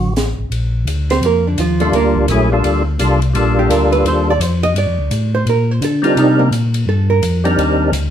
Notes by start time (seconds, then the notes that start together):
Already playing: A1 F#4
0.16 snare, closed hi-hat
0.38 A1
0.50 A#1, ride
0.85 D2, hi-hat pedal, ride
1.10 C4 C5, snare, ride
1.21 F2 A#3, ride
1.26 A#4
1.47 D3 D4
1.58 D#2 F3 F4, hi-hat pedal, ride
1.80 G3 A3 A#3 D4 F4 A4, ride
1.92 D2 A#4, ride
1.96 A#3
2.16 kick
2.28 A#1 F#3 A3 C#4 E4 G#4, hi-hat pedal, ride
2.52 G3 A#3 D4 F4 A4
2.64 D2, ride
2.99 C2 G3 A#3 D4 F4 A4, hi-hat pedal, ride
3.22 ride
3.34 A#1 G3 A#3 D4 F4 A4, ride
3.59 G4
3.69 D2 A#4, hi-hat pedal, ride
3.92 B4, ride
4.04 D#2 C5, ride
4.30 D5
4.39 F2 C5, hi-hat pedal, ride
4.63 D#5, ride
4.74 G2 D5, ride
4.87 F2
4.99 D2
5.11 A2, hi-hat pedal, ride
5.35 C5
5.46 A#2 A#4, ride
5.71 C5
5.81 D3 A4, hi-hat pedal, ride
6.02 G3 C4 D4 D#4 F4 A#4, ride
6.16 C3 D#4, ride
6.39 A#3
6.51 A#2, hi-hat pedal, ride
6.74 ride
6.86 G2 A4
7.10 A#4
7.23 F2, hi-hat pedal, ride
7.44 G3 C4 D4 D#4 A#4, ride
7.57 D#2, ride
7.92 D2, hi-hat pedal, ride